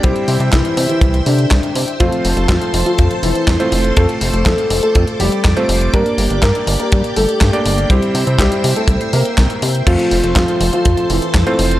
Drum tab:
CC |----------------|----------------|----------------|----------------|
HH |xxoxxxoxxxoxxxox|xxoxxxoxxxoxxxox|xxoxxxoxxxoxxxox|xxoxxxoxxxoxxxox|
CP |----x-------x---|----x-------x---|----x-------x---|----x-------x---|
SD |----o-------o---|----o-------o---|----o-------o---|----o-------o---|
BD |o---o---o---o---|o---o---o---o---|o---o---o---o---|o---o---o---o---|

CC |----------------|x---------------|
HH |xxoxxxoxxxoxxxox|xxoxxxoxxxoxxxox|
CP |----x-------x---|----x-------x---|
SD |----o-------o---|----o-------o---|
BD |o---o---o---o---|o---o---o---o---|